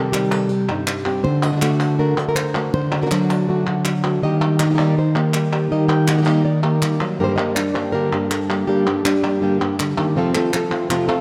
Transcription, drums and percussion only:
0.14 clap
0.32 clap
0.69 clap
0.87 clap
1.05 clap
1.43 clap
1.62 clap
1.80 clap
2.36 clap
2.55 clap
3.11 clap
3.30 clap
3.85 clap
4.04 clap
4.42 clap
4.59 clap
5.15 clap
5.34 clap
5.53 clap
6.08 clap
6.26 clap
6.63 clap
6.82 clap
7.00 clap
7.56 clap
7.76 clap
8.31 clap
8.50 clap
9.05 clap
9.24 clap
9.61 clap
9.79 clap
9.98 clap
10.35 clap
10.53 clap
10.72 clap
10.90 clap
11.09 clap

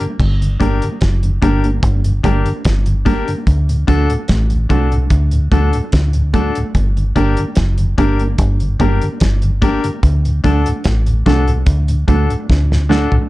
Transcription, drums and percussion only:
0.01 closed hi-hat
0.20 kick, crash
0.42 closed hi-hat
0.61 kick, closed hi-hat
0.82 closed hi-hat
1.01 kick, snare, closed hi-hat
1.23 closed hi-hat
1.42 kick, closed hi-hat
1.64 closed hi-hat
1.83 kick, closed hi-hat
2.04 closed hi-hat
2.24 kick, closed hi-hat
2.46 closed hi-hat
2.65 kick, snare, closed hi-hat
2.86 closed hi-hat
3.06 kick, closed hi-hat
3.28 closed hi-hat
3.47 kick, closed hi-hat
3.69 closed hi-hat
3.88 kick, closed hi-hat
4.10 closed hi-hat
4.28 kick, snare, closed hi-hat
4.50 closed hi-hat
4.70 kick, closed hi-hat
4.92 closed hi-hat
5.10 kick, closed hi-hat
5.31 closed hi-hat
5.52 kick, closed hi-hat
5.73 closed hi-hat
5.92 kick, snare, closed hi-hat
6.13 closed hi-hat
6.34 kick, closed hi-hat
6.55 closed hi-hat
6.75 kick, closed hi-hat
6.97 closed hi-hat
7.16 kick, closed hi-hat
7.37 closed hi-hat
7.55 kick, snare, closed hi-hat
7.78 closed hi-hat
7.98 kick, closed hi-hat
8.19 closed hi-hat
8.38 kick, closed hi-hat
8.60 closed hi-hat
8.80 kick, closed hi-hat
9.02 closed hi-hat
9.20 kick, snare, closed hi-hat
9.42 closed hi-hat
9.62 kick, closed hi-hat
9.84 closed hi-hat
10.03 kick, closed hi-hat
10.25 closed hi-hat
10.44 kick, closed hi-hat
10.66 closed hi-hat
10.84 kick, snare, closed hi-hat
11.06 closed hi-hat
11.26 kick, snare, closed hi-hat
11.48 closed hi-hat
11.66 kick, closed hi-hat
11.88 closed hi-hat
12.08 kick, closed hi-hat
12.30 closed hi-hat
12.50 kick, snare
12.72 snare
12.91 snare
13.12 floor tom

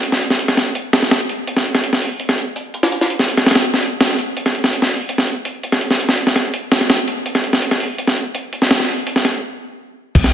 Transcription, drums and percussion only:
0.03 closed hi-hat
0.12 snare
0.21 closed hi-hat
0.30 snare
0.39 closed hi-hat
0.48 snare
0.57 snare, closed hi-hat
0.75 closed hi-hat
0.93 snare, closed hi-hat
1.02 snare
1.11 snare, closed hi-hat
1.20 closed hi-hat
1.29 closed hi-hat
1.47 closed hi-hat
1.57 snare
1.66 closed hi-hat
1.75 snare
1.84 closed hi-hat
1.93 snare
2.02 open hi-hat
2.20 closed hi-hat
2.29 snare
2.38 closed hi-hat
2.56 closed hi-hat
2.74 closed hi-hat
2.83 snare
2.92 closed hi-hat
3.01 snare
3.10 closed hi-hat
3.19 snare
3.28 closed hi-hat
3.37 snare
3.46 snare, closed hi-hat
3.51 snare, closed hi-hat
3.55 snare, closed hi-hat
3.65 closed hi-hat
3.74 snare
3.83 closed hi-hat
4.01 snare, closed hi-hat
4.19 closed hi-hat
4.37 closed hi-hat
4.46 snare
4.55 closed hi-hat
4.64 snare
4.73 closed hi-hat
4.82 snare
4.91 open hi-hat
5.09 closed hi-hat
5.18 snare
5.27 closed hi-hat
5.45 closed hi-hat
5.63 closed hi-hat
5.72 snare
5.81 closed hi-hat
5.91 snare
5.99 closed hi-hat
6.09 snare
6.18 closed hi-hat
6.27 snare
6.36 snare, closed hi-hat
6.54 closed hi-hat
6.72 snare, closed hi-hat
6.81 snare
6.90 snare, closed hi-hat
6.99 closed hi-hat
7.08 closed hi-hat
7.26 closed hi-hat
7.35 snare
7.44 closed hi-hat
7.53 snare
7.62 closed hi-hat
7.71 snare
7.80 open hi-hat
7.98 closed hi-hat
8.07 snare
8.16 closed hi-hat
8.35 closed hi-hat
8.53 closed hi-hat
8.62 snare
8.71 snare, closed hi-hat
8.80 snare
8.89 open hi-hat
9.07 closed hi-hat
9.16 snare
9.25 snare, closed hi-hat
10.15 kick, closed hi-hat, crash
10.24 snare

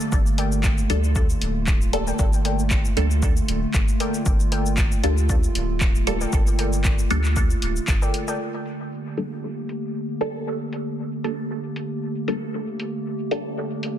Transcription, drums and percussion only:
0.00 cabasa
0.12 kick, cabasa
0.26 cabasa
0.38 closed hi-hat
0.52 cabasa
0.64 kick, clap, cabasa
0.78 cabasa
0.90 closed hi-hat
1.04 cabasa
1.16 kick, cabasa
1.30 cabasa
1.42 closed hi-hat
1.67 kick, clap, cabasa
1.81 cabasa
1.93 closed hi-hat
2.07 cabasa
2.19 kick, cabasa
2.33 cabasa
2.45 closed hi-hat
2.59 cabasa
2.71 kick, clap, cabasa
2.85 cabasa
2.97 closed hi-hat
3.11 cabasa
3.23 kick, cabasa
3.37 cabasa
3.48 closed hi-hat
3.74 kick, clap, cabasa
3.88 cabasa
4.00 closed hi-hat
4.14 cabasa
4.26 kick, cabasa
4.40 cabasa
4.52 closed hi-hat
4.66 cabasa
4.78 kick, clap, cabasa
4.92 cabasa
5.04 closed hi-hat
5.18 cabasa
5.29 kick, cabasa
5.43 cabasa
5.55 closed hi-hat
5.81 kick, clap, cabasa
5.95 cabasa
6.07 closed hi-hat
6.21 cabasa
6.33 kick, cabasa
6.47 cabasa
6.59 closed hi-hat
6.73 cabasa
6.85 kick, clap, cabasa
6.99 cabasa
7.11 closed hi-hat
7.24 clap, cabasa
7.36 kick, cabasa
7.50 cabasa
7.62 closed hi-hat
7.76 cabasa
7.88 kick, clap, cabasa
8.02 cabasa
8.14 closed hi-hat
8.28 cabasa
8.66 closed hi-hat
9.17 closed hi-hat
9.69 closed hi-hat
10.21 closed hi-hat
10.73 closed hi-hat
11.24 closed hi-hat
11.76 closed hi-hat
12.28 closed hi-hat
12.80 closed hi-hat
13.31 closed hi-hat
13.83 closed hi-hat

